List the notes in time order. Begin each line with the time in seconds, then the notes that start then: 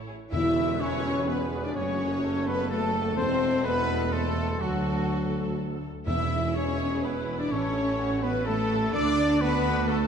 Already playing: A1 A2
0.08 G#4
0.31 E1 E2 E4 G#4 B4 E5 E6, tam-tam
0.79 C#4 E4 C#5 C#6
1.27 B3 G#4 B4 B5
1.64 D4 D5 D6
1.75 F#1 F#2 A3 C#4 F#4 C#5 C#6
2.24 A4
2.46 B3 B4 B5
2.69 A3 A4 A5
3.17 E1 E2 C4 A4 C5 C6
3.64 B3 B4 B5
4.12 A3 A4 C5 A5
4.59 D2 F#3 F#4 A4 F#5
6.06 E1 E2 E4 G#4 E5 E6
6.54 C#4 G#4 C#5 C#6
7.02 B3 B4 B5
7.39 D4 D5 D6
7.51 A1 C#4 A4 C#5 C#6
7.99 F#4
8.22 B3 B4 B5
8.45 A3 E4 A4 A5
8.93 D2 D4 F#4 D5 D6
9.40 B3 D4 B4 B5
9.88 A3 F#4 A4 A5